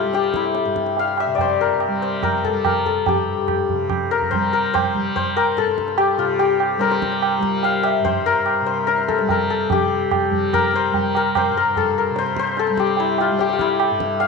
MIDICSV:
0, 0, Header, 1, 4, 480
1, 0, Start_track
1, 0, Tempo, 417537
1, 1594, Time_signature, 4, 2, 24, 8
1, 8784, Tempo, 409556
1, 16559, End_track
2, 0, Start_track
2, 0, Title_t, "Santur"
2, 0, Program_c, 0, 15
2, 0, Note_on_c, 0, 65, 67
2, 0, Note_on_c, 0, 67, 74
2, 0, Note_on_c, 0, 69, 78
2, 0, Note_on_c, 0, 72, 77
2, 162, Note_off_c, 0, 67, 0
2, 166, Note_on_c, 0, 67, 79
2, 410, Note_on_c, 0, 64, 73
2, 479, Note_off_c, 0, 65, 0
2, 1141, Note_on_c, 0, 77, 79
2, 1210, Note_off_c, 0, 64, 0
2, 1381, Note_on_c, 0, 76, 81
2, 1450, Note_off_c, 0, 77, 0
2, 1550, Note_on_c, 0, 74, 62
2, 1614, Note_off_c, 0, 72, 0
2, 1619, Note_on_c, 0, 72, 76
2, 1849, Note_on_c, 0, 70, 74
2, 1918, Note_off_c, 0, 69, 0
2, 2321, Note_off_c, 0, 72, 0
2, 2326, Note_on_c, 0, 72, 72
2, 2563, Note_off_c, 0, 70, 0
2, 2567, Note_on_c, 0, 70, 73
2, 2810, Note_on_c, 0, 69, 72
2, 2879, Note_off_c, 0, 70, 0
2, 3052, Note_on_c, 0, 70, 69
2, 3121, Note_off_c, 0, 69, 0
2, 3287, Note_on_c, 0, 69, 63
2, 3356, Note_off_c, 0, 70, 0
2, 3540, Note_off_c, 0, 67, 0
2, 3545, Note_on_c, 0, 67, 64
2, 4037, Note_off_c, 0, 76, 0
2, 4379, Note_off_c, 0, 74, 0
2, 4727, Note_on_c, 0, 70, 79
2, 4796, Note_off_c, 0, 69, 0
2, 4948, Note_off_c, 0, 72, 0
2, 4953, Note_on_c, 0, 72, 87
2, 5204, Note_off_c, 0, 70, 0
2, 5208, Note_on_c, 0, 70, 77
2, 5441, Note_off_c, 0, 72, 0
2, 5446, Note_on_c, 0, 72, 88
2, 5926, Note_off_c, 0, 72, 0
2, 5930, Note_on_c, 0, 72, 81
2, 6163, Note_off_c, 0, 70, 0
2, 6167, Note_on_c, 0, 70, 79
2, 6415, Note_on_c, 0, 69, 86
2, 6484, Note_off_c, 0, 70, 0
2, 6868, Note_off_c, 0, 67, 0
2, 6872, Note_on_c, 0, 67, 81
2, 7113, Note_on_c, 0, 65, 74
2, 7344, Note_off_c, 0, 67, 0
2, 7349, Note_on_c, 0, 67, 81
2, 7806, Note_off_c, 0, 72, 0
2, 7810, Note_on_c, 0, 72, 57
2, 7825, Note_on_c, 0, 70, 82
2, 7894, Note_off_c, 0, 69, 0
2, 7940, Note_off_c, 0, 72, 0
2, 7944, Note_on_c, 0, 72, 69
2, 8785, Note_on_c, 0, 77, 86
2, 9009, Note_on_c, 0, 76, 84
2, 9079, Note_off_c, 0, 65, 0
2, 9079, Note_off_c, 0, 77, 0
2, 9254, Note_off_c, 0, 72, 0
2, 9259, Note_on_c, 0, 72, 89
2, 9504, Note_off_c, 0, 70, 0
2, 9509, Note_on_c, 0, 70, 80
2, 9977, Note_off_c, 0, 72, 0
2, 9982, Note_on_c, 0, 72, 77
2, 10218, Note_off_c, 0, 70, 0
2, 10223, Note_on_c, 0, 70, 79
2, 10475, Note_on_c, 0, 69, 76
2, 10545, Note_off_c, 0, 70, 0
2, 10732, Note_on_c, 0, 70, 75
2, 10802, Note_off_c, 0, 69, 0
2, 10965, Note_on_c, 0, 69, 72
2, 10999, Note_off_c, 0, 67, 0
2, 11035, Note_off_c, 0, 70, 0
2, 11223, Note_on_c, 0, 67, 79
2, 11716, Note_off_c, 0, 76, 0
2, 12178, Note_on_c, 0, 70, 90
2, 12249, Note_off_c, 0, 69, 0
2, 12429, Note_off_c, 0, 72, 0
2, 12434, Note_on_c, 0, 72, 87
2, 12910, Note_off_c, 0, 70, 0
2, 12914, Note_on_c, 0, 70, 75
2, 13149, Note_off_c, 0, 72, 0
2, 13154, Note_on_c, 0, 72, 85
2, 13387, Note_off_c, 0, 70, 0
2, 13392, Note_on_c, 0, 70, 79
2, 13625, Note_on_c, 0, 69, 81
2, 13695, Note_off_c, 0, 70, 0
2, 13868, Note_on_c, 0, 70, 72
2, 13938, Note_off_c, 0, 69, 0
2, 14105, Note_off_c, 0, 72, 0
2, 14110, Note_on_c, 0, 72, 91
2, 14349, Note_off_c, 0, 72, 0
2, 14354, Note_on_c, 0, 72, 88
2, 14588, Note_on_c, 0, 69, 85
2, 14658, Note_off_c, 0, 70, 0
2, 14820, Note_off_c, 0, 67, 0
2, 14825, Note_on_c, 0, 67, 74
2, 15060, Note_on_c, 0, 64, 78
2, 15305, Note_on_c, 0, 65, 77
2, 15375, Note_off_c, 0, 64, 0
2, 15534, Note_off_c, 0, 67, 0
2, 15539, Note_on_c, 0, 67, 83
2, 15681, Note_off_c, 0, 65, 0
2, 15685, Note_on_c, 0, 65, 58
2, 15778, Note_on_c, 0, 64, 76
2, 15849, Note_off_c, 0, 65, 0
2, 16471, Note_on_c, 0, 77, 89
2, 16541, Note_off_c, 0, 64, 0
2, 16559, Note_off_c, 0, 67, 0
2, 16559, Note_off_c, 0, 69, 0
2, 16559, Note_off_c, 0, 72, 0
2, 16559, Note_off_c, 0, 77, 0
2, 16559, End_track
3, 0, Start_track
3, 0, Title_t, "Tanpura"
3, 0, Program_c, 1, 104
3, 0, Note_on_c, 1, 43, 55
3, 0, Note_on_c, 1, 48, 54
3, 0, Note_on_c, 1, 55, 52
3, 41, Note_off_c, 1, 55, 0
3, 41, Note_on_c, 1, 55, 55
3, 741, Note_off_c, 1, 43, 0
3, 745, Note_on_c, 1, 43, 54
3, 1453, Note_off_c, 1, 48, 0
3, 1457, Note_on_c, 1, 48, 57
3, 2157, Note_off_c, 1, 55, 0
3, 2157, Note_on_c, 1, 55, 47
3, 2871, Note_off_c, 1, 55, 0
3, 2871, Note_on_c, 1, 55, 51
3, 3561, Note_off_c, 1, 43, 0
3, 3566, Note_on_c, 1, 43, 51
3, 4279, Note_off_c, 1, 48, 0
3, 4284, Note_on_c, 1, 48, 51
3, 4985, Note_off_c, 1, 55, 0
3, 4985, Note_on_c, 1, 55, 54
3, 5683, Note_off_c, 1, 55, 0
3, 5683, Note_on_c, 1, 55, 56
3, 6394, Note_off_c, 1, 43, 0
3, 6399, Note_on_c, 1, 43, 52
3, 7091, Note_off_c, 1, 48, 0
3, 7095, Note_on_c, 1, 48, 58
3, 7788, Note_off_c, 1, 55, 0
3, 7788, Note_on_c, 1, 55, 56
3, 8498, Note_off_c, 1, 55, 0
3, 8498, Note_on_c, 1, 55, 54
3, 9194, Note_off_c, 1, 43, 0
3, 9198, Note_on_c, 1, 43, 56
3, 9915, Note_off_c, 1, 48, 0
3, 9919, Note_on_c, 1, 48, 57
3, 10619, Note_off_c, 1, 55, 0
3, 10619, Note_on_c, 1, 55, 54
3, 11188, Note_off_c, 1, 48, 0
3, 11188, Note_on_c, 1, 48, 58
3, 11900, Note_off_c, 1, 55, 0
3, 11900, Note_on_c, 1, 55, 57
3, 12619, Note_off_c, 1, 55, 0
3, 12619, Note_on_c, 1, 55, 57
3, 13307, Note_off_c, 1, 43, 0
3, 13312, Note_on_c, 1, 43, 59
3, 14012, Note_off_c, 1, 48, 0
3, 14012, Note_on_c, 1, 48, 55
3, 14700, Note_off_c, 1, 55, 0
3, 14705, Note_on_c, 1, 55, 54
3, 15427, Note_off_c, 1, 55, 0
3, 15427, Note_on_c, 1, 55, 59
3, 16121, Note_off_c, 1, 43, 0
3, 16126, Note_on_c, 1, 43, 62
3, 16559, Note_off_c, 1, 43, 0
3, 16559, Note_off_c, 1, 48, 0
3, 16559, Note_off_c, 1, 55, 0
3, 16559, End_track
4, 0, Start_track
4, 0, Title_t, "Tabla"
4, 155, Note_on_c, 9, 62, 67
4, 270, Note_off_c, 9, 62, 0
4, 273, Note_on_c, 9, 62, 50
4, 388, Note_off_c, 9, 62, 0
4, 388, Note_on_c, 9, 37, 55
4, 503, Note_off_c, 9, 37, 0
4, 509, Note_on_c, 9, 62, 52
4, 624, Note_off_c, 9, 62, 0
4, 628, Note_on_c, 9, 62, 68
4, 743, Note_off_c, 9, 62, 0
4, 753, Note_on_c, 9, 62, 48
4, 868, Note_off_c, 9, 62, 0
4, 874, Note_on_c, 9, 37, 50
4, 989, Note_off_c, 9, 37, 0
4, 993, Note_on_c, 9, 62, 53
4, 1108, Note_off_c, 9, 62, 0
4, 1114, Note_on_c, 9, 63, 64
4, 1229, Note_off_c, 9, 63, 0
4, 1350, Note_on_c, 9, 60, 49
4, 1465, Note_off_c, 9, 60, 0
4, 1588, Note_on_c, 9, 63, 74
4, 1588, Note_on_c, 9, 64, 63
4, 1703, Note_off_c, 9, 63, 0
4, 1703, Note_off_c, 9, 64, 0
4, 2073, Note_on_c, 9, 60, 66
4, 2188, Note_off_c, 9, 60, 0
4, 2560, Note_on_c, 9, 60, 68
4, 2560, Note_on_c, 9, 64, 64
4, 2675, Note_off_c, 9, 60, 0
4, 2675, Note_off_c, 9, 64, 0
4, 2802, Note_on_c, 9, 64, 45
4, 2917, Note_off_c, 9, 64, 0
4, 3041, Note_on_c, 9, 60, 68
4, 3041, Note_on_c, 9, 64, 60
4, 3156, Note_off_c, 9, 60, 0
4, 3156, Note_off_c, 9, 64, 0
4, 3284, Note_on_c, 9, 64, 46
4, 3399, Note_off_c, 9, 64, 0
4, 3522, Note_on_c, 9, 63, 89
4, 3522, Note_on_c, 9, 64, 80
4, 3637, Note_off_c, 9, 63, 0
4, 3637, Note_off_c, 9, 64, 0
4, 4001, Note_on_c, 9, 60, 66
4, 4001, Note_on_c, 9, 64, 61
4, 4116, Note_off_c, 9, 60, 0
4, 4116, Note_off_c, 9, 64, 0
4, 4245, Note_on_c, 9, 64, 49
4, 4360, Note_off_c, 9, 64, 0
4, 4479, Note_on_c, 9, 60, 70
4, 4479, Note_on_c, 9, 64, 65
4, 4594, Note_off_c, 9, 60, 0
4, 4594, Note_off_c, 9, 64, 0
4, 4729, Note_on_c, 9, 62, 55
4, 4844, Note_off_c, 9, 62, 0
4, 4850, Note_on_c, 9, 64, 52
4, 4965, Note_off_c, 9, 64, 0
4, 4972, Note_on_c, 9, 63, 64
4, 4972, Note_on_c, 9, 64, 58
4, 5087, Note_off_c, 9, 63, 0
4, 5087, Note_off_c, 9, 64, 0
4, 5459, Note_on_c, 9, 60, 73
4, 5459, Note_on_c, 9, 64, 64
4, 5574, Note_off_c, 9, 60, 0
4, 5574, Note_off_c, 9, 64, 0
4, 5693, Note_on_c, 9, 64, 47
4, 5808, Note_off_c, 9, 64, 0
4, 5931, Note_on_c, 9, 63, 71
4, 5931, Note_on_c, 9, 64, 60
4, 6046, Note_off_c, 9, 63, 0
4, 6046, Note_off_c, 9, 64, 0
4, 6173, Note_on_c, 9, 60, 53
4, 6288, Note_off_c, 9, 60, 0
4, 6404, Note_on_c, 9, 62, 73
4, 6519, Note_off_c, 9, 62, 0
4, 6523, Note_on_c, 9, 62, 49
4, 6638, Note_off_c, 9, 62, 0
4, 6643, Note_on_c, 9, 37, 49
4, 6758, Note_off_c, 9, 37, 0
4, 6760, Note_on_c, 9, 62, 58
4, 6870, Note_on_c, 9, 60, 73
4, 6875, Note_off_c, 9, 62, 0
4, 6985, Note_off_c, 9, 60, 0
4, 7108, Note_on_c, 9, 60, 52
4, 7223, Note_off_c, 9, 60, 0
4, 7348, Note_on_c, 9, 63, 71
4, 7463, Note_off_c, 9, 63, 0
4, 7588, Note_on_c, 9, 60, 59
4, 7703, Note_off_c, 9, 60, 0
4, 7826, Note_on_c, 9, 62, 71
4, 7941, Note_off_c, 9, 62, 0
4, 7948, Note_on_c, 9, 62, 51
4, 8063, Note_off_c, 9, 62, 0
4, 8072, Note_on_c, 9, 37, 57
4, 8187, Note_off_c, 9, 37, 0
4, 8188, Note_on_c, 9, 62, 50
4, 8303, Note_off_c, 9, 62, 0
4, 8305, Note_on_c, 9, 60, 70
4, 8420, Note_off_c, 9, 60, 0
4, 8535, Note_on_c, 9, 37, 51
4, 8650, Note_off_c, 9, 37, 0
4, 8772, Note_on_c, 9, 63, 72
4, 8889, Note_off_c, 9, 63, 0
4, 9011, Note_on_c, 9, 60, 53
4, 9128, Note_off_c, 9, 60, 0
4, 9261, Note_on_c, 9, 63, 66
4, 9261, Note_on_c, 9, 64, 62
4, 9378, Note_off_c, 9, 63, 0
4, 9378, Note_off_c, 9, 64, 0
4, 9742, Note_on_c, 9, 60, 68
4, 9859, Note_off_c, 9, 60, 0
4, 10236, Note_on_c, 9, 62, 70
4, 10353, Note_off_c, 9, 62, 0
4, 10353, Note_on_c, 9, 62, 52
4, 10470, Note_off_c, 9, 62, 0
4, 10476, Note_on_c, 9, 37, 50
4, 10593, Note_off_c, 9, 37, 0
4, 10594, Note_on_c, 9, 62, 58
4, 10711, Note_off_c, 9, 62, 0
4, 10714, Note_on_c, 9, 63, 72
4, 10714, Note_on_c, 9, 64, 63
4, 10831, Note_off_c, 9, 63, 0
4, 10831, Note_off_c, 9, 64, 0
4, 11196, Note_on_c, 9, 63, 93
4, 11196, Note_on_c, 9, 64, 87
4, 11313, Note_off_c, 9, 63, 0
4, 11313, Note_off_c, 9, 64, 0
4, 11683, Note_on_c, 9, 60, 67
4, 11683, Note_on_c, 9, 64, 67
4, 11800, Note_off_c, 9, 60, 0
4, 11800, Note_off_c, 9, 64, 0
4, 11927, Note_on_c, 9, 64, 50
4, 12044, Note_off_c, 9, 64, 0
4, 12173, Note_on_c, 9, 60, 72
4, 12173, Note_on_c, 9, 64, 67
4, 12290, Note_off_c, 9, 60, 0
4, 12290, Note_off_c, 9, 64, 0
4, 12413, Note_on_c, 9, 62, 54
4, 12530, Note_off_c, 9, 62, 0
4, 12652, Note_on_c, 9, 63, 69
4, 12652, Note_on_c, 9, 64, 64
4, 12769, Note_off_c, 9, 63, 0
4, 12769, Note_off_c, 9, 64, 0
4, 12895, Note_on_c, 9, 60, 54
4, 13013, Note_off_c, 9, 60, 0
4, 13135, Note_on_c, 9, 60, 78
4, 13135, Note_on_c, 9, 64, 68
4, 13252, Note_off_c, 9, 60, 0
4, 13252, Note_off_c, 9, 64, 0
4, 13607, Note_on_c, 9, 63, 70
4, 13607, Note_on_c, 9, 64, 65
4, 13724, Note_off_c, 9, 63, 0
4, 13724, Note_off_c, 9, 64, 0
4, 14080, Note_on_c, 9, 62, 77
4, 14197, Note_off_c, 9, 62, 0
4, 14202, Note_on_c, 9, 62, 53
4, 14319, Note_off_c, 9, 62, 0
4, 14321, Note_on_c, 9, 37, 58
4, 14438, Note_off_c, 9, 37, 0
4, 14446, Note_on_c, 9, 62, 61
4, 14562, Note_off_c, 9, 62, 0
4, 14562, Note_on_c, 9, 62, 71
4, 14679, Note_off_c, 9, 62, 0
4, 14681, Note_on_c, 9, 62, 60
4, 14798, Note_off_c, 9, 62, 0
4, 14800, Note_on_c, 9, 37, 56
4, 14913, Note_on_c, 9, 62, 57
4, 14917, Note_off_c, 9, 37, 0
4, 15028, Note_on_c, 9, 63, 75
4, 15031, Note_off_c, 9, 62, 0
4, 15145, Note_off_c, 9, 63, 0
4, 15278, Note_on_c, 9, 60, 59
4, 15395, Note_off_c, 9, 60, 0
4, 15522, Note_on_c, 9, 62, 75
4, 15639, Note_off_c, 9, 62, 0
4, 15642, Note_on_c, 9, 62, 55
4, 15758, Note_on_c, 9, 37, 55
4, 15759, Note_off_c, 9, 62, 0
4, 15875, Note_off_c, 9, 37, 0
4, 15883, Note_on_c, 9, 62, 51
4, 15999, Note_on_c, 9, 60, 77
4, 16000, Note_off_c, 9, 62, 0
4, 16116, Note_off_c, 9, 60, 0
4, 16239, Note_on_c, 9, 37, 56
4, 16357, Note_off_c, 9, 37, 0
4, 16471, Note_on_c, 9, 63, 71
4, 16559, Note_off_c, 9, 63, 0
4, 16559, End_track
0, 0, End_of_file